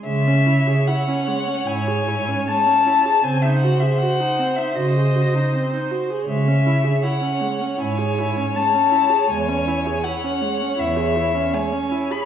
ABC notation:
X:1
M:4/4
L:1/16
Q:1/4=79
K:C#m
V:1 name="Violin"
e4 f4 g4 a4 | g e f e f3 e d6 z2 | e4 f4 g4 a4 | g4 f4 e4 g3 b |]
V:2 name="Violin"
c16 | ^B16 | c16- | c16 |]
V:3 name="Viola"
G, C E G E C G, C E G E C G, C E G | ^B, D F G F D B, D F G F D B, D F G | G, C E G E C G, C E G E C G, C E G | G, C E G E C G, C E G E C G, C E G |]
V:4 name="Cello" clef=bass
C,4 z4 G,,4 z4 | C,4 z4 C,4 z4 | C,4 z4 G,,4 z4 | E,,4 z4 E,,4 z4 |]